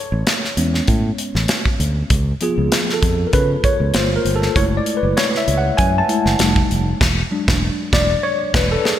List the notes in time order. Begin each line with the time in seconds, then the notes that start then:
Already playing: C#5
0.12 A1
0.27 snare, closed hi-hat
0.44 snare
0.57 E2 G#3 B3 C#4, closed hi-hat
0.74 snare
0.88 A2, kick, closed hi-hat
1.18 closed hi-hat
1.35 A1, snare
1.48 snare, closed hi-hat
1.65 kick
1.80 D2, closed hi-hat
2.10 C#2, kick, closed hi-hat
2.41 F3 B3 F4 G#4, closed hi-hat
2.58 C#2
2.72 snare, closed hi-hat
2.89 snare
2.93 A4
3.03 F2, kick, closed hi-hat
3.27 A#4
3.33 C#3 B4, kick, closed hi-hat
3.64 C#5, kick, closed hi-hat
3.80 C#2
3.94 G1 A3 A#3 F4 C5, snare, closed hi-hat
4.16 A#4
4.25 G1, closed hi-hat
4.36 A4
4.42 snare
4.55 F#1 G#3 A3 E4 C#5, kick, closed hi-hat
4.77 D5
4.86 closed hi-hat
4.97 B4
5.03 F#1
5.17 C#5, snare, closed hi-hat
5.35 E5, snare
5.48 C#2, closed hi-hat
5.58 F#5
5.77 F#2 G#5, kick, closed hi-hat
5.98 A5
6.08 G#3 A3 E4, closed hi-hat
6.26 F#1, snare
6.39 F1 G3 A3 D#4, snare, closed hi-hat
6.56 kick
6.70 F1, closed hi-hat
7.01 E1, kick, snare, crash
7.31 F#3 G#3 D4
7.48 E1, kick, snare
7.93 E1 D5, kick, snare
8.23 C#5
8.54 E1 B4, kick, snare, crash
8.72 A4
8.85 G#4, snare